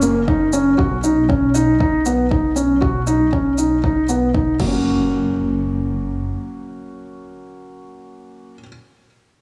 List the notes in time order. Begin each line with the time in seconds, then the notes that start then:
Already playing: F#1, downlifter
0.02 A#3, shaker
0.28 D#4, kick
0.53 C#4, shaker
0.78 B1 F#4, kick
1.04 D#4, shaker
1.29 C#4, kick
1.54 D#4, shaker
1.80 D#4, kick
2.06 B3, shaker
2.31 D#4, kick
2.56 C#4, shaker
2.81 F#4, kick
3.07 D#4, shaker
3.33 C#4, kick
3.58 D#4, shaker
3.84 D#4, kick
4.09 B3, shaker
4.34 D#4, kick
4.60 F#1 F#3 A#3, kick, crash, impact
4.67 C#4
4.72 F#4